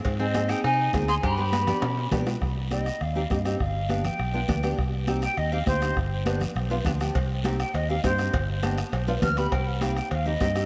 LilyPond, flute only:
\new Staff \with { instrumentName = "Flute" } { \time 4/4 \key c \minor \tempo 4 = 203 r8 ees''4 g''8 aes''4 r8 c'''8 | b''2. r4 | r4 ees''4 f''4 ees''8 ees''8 | f''4. g''2 r8 |
r4. g''8 ees''8 f''8 c''4 | r1 | r4. g''8 ees''8 f''8 c''4 | r2. f'''8 b''8 |
g''8 fis''8 f''8 g''8 f''8 ees''4. | }